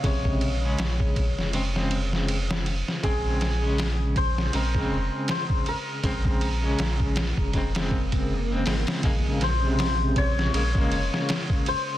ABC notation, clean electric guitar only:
X:1
M:4/4
L:1/16
Q:"Swing 16ths" 1/4=80
K:Bbm
V:1 name="Clean electric guitar" clef=bass
[C,D,A,]3 [D,A,D]4- [D,A,D] [D,A,C] [D,A,C]6- [D,A,C] | [D,A,C]3 [D,A,D]4- [D,A,D] [D,A,C] [D,A,C]6- [D,A,C] | [D,A,C]3 [D,A,D]4- [D,A,D] [D,A,C] [D,A,C]4 [D,A,C] [D,A,C]2 | [D,A,B,]3 [C,D,A,]4- [C,D,A,] [D,A,B,] [D,A,B,]6- [D,A,B,] |]